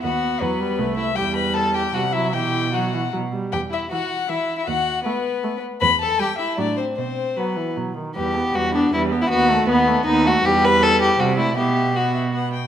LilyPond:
<<
  \new Staff \with { instrumentName = "Violin" } { \time 3/4 \key e \minor \tempo 4 = 157 fis''4 b'4. e''8 | g''8 b''8 a''8 g''8 fis''8 e''8 | g''4 fis''4 r4 | g''8 e''8 fis''4 e''8. e''16 |
fis''4 b'4. r8 | b''8 a''8 g''8 e''8 d''8 c''8 | c''4 b'4 r4 | b'8 g'8 b'8 g'8 b'8 g'8 |
b'8 a'8 b'8 a'8 b'8 a'8 | b'2 c''8 d''8 | e''4 fis''8 e''8 fis''8 g''8 | }
  \new Staff \with { instrumentName = "Violin" } { \time 3/4 \key e \minor fis'4 b4. e'8 | g'8 b'8 a'8 g'8 fis'8 e'8 | g'4 fis'4 r4 | g'8 e'8 fis'4 e'8. e'16 |
fis'4 b4. r8 | b'8 a'8 g'8 e'8 d'8 c'8 | c'4 b4 r4 | g'4 fis'8 d'8 e'8. e'16 |
fis'4 b4 dis'8 fis'8 | g'8 b'8 a'8 g'8 fis'8 e'8 | g'4 fis'4 r4 | }
  \new Staff \with { instrumentName = "Viola" } { \clef bass \time 3/4 \key e \minor b4 fis8 g8 a4 | g2 g8 fis8 | e4 fis8 e8 fis8 g8 | r4 e4 e4 |
r4 a4 a4 | r4 g4 fis4 | r4 fis8 e8 fis8 dis8 | g8 b8 g8 b8 g8 b8 |
b8 a8 b8 a8 b8 a8 | g2 g8 a8 | b4 b4 b8 r8 | }
  \new Staff \with { instrumentName = "Cello" } { \clef bass \time 3/4 \key e \minor dis,4 e,4 c,4 | e,2 c4 | b,2 b,8 r8 | e,4 r2 |
dis,4 r2 | e,4 r4 a,4 | b,4 r4 b,4 | e,4 e,4 e,4 |
dis,4 dis,4 dis,4 | e,2 c4 | b,2~ b,8 r8 | }
>>